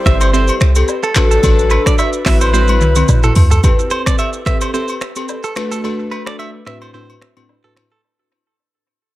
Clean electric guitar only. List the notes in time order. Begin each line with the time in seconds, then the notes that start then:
0.06 E5
0.21 C5
0.33 C5
1.04 A4
1.31 A4
1.71 B4
1.86 D5
1.99 E5
2.26 E5
2.41 C5
2.54 C5
3.24 A4
3.51 A4
3.91 C5
4.06 D5
4.19 E5
4.46 E5
4.61 C5
4.74 C5
5.44 A4
5.72 A4
6.11 B4
6.27 D5
6.39 E5
6.67 E5
6.82 C5
6.94 C5
7.64 A4
7.92 A4